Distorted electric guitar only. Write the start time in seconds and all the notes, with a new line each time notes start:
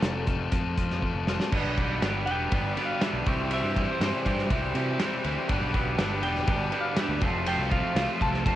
1.52 G2 D3 G3 B3 D4 G4
1.77 G2 D3 G3 B3 D4 G4
2.02 G2 D3 G3 B3 D4 G4
2.27 G2 D3 G3 B3 D4 G4
2.51 G2 D3 G3 B3 D4 G4
2.76 G2 D3 G3 B3 D4 G4
3.00 G2 D3 G3 B3 D4 G4
3.26 C3 E3 G3 E4 G4
3.51 C3 E3 G3 E4 G4
3.75 C3 E3 G3 E4 G4
4.00 C3 E3 G3 E4 G4
4.25 C3 E3 G3 E4 G4
4.50 C3 E3 G3 E4 G4
4.75 C3 E3 G3 E4 G4
4.99 C3 E3 G3 E4 G4
5.24 C3 E3 G3 E4 G4
5.48 G2 D3 G3 B3 D4 G4
5.74 G2 D3 G3 B3 D4 G4
5.98 G2 D3 G3 B3 D4 G4
6.23 G2 D3 G3 B3 D4 G4
6.46 G2 D3 G3 B3 D4 G4
6.71 G2 D3 G3 B3 D4 G4
6.96 G2 D3 G3 B3 D4 G4
7.20 F2 C3 F3 A3 C4 F4
7.46 F2 C3 F3 A3 C4 F4
7.70 F2 C3 F3 A3 C4 F4
7.95 F2 C3 F3 A3 C4 F4
8.21 F2 C3 F3 A3 C4 F4
8.46 F2 C3 F3 A3 C4 F4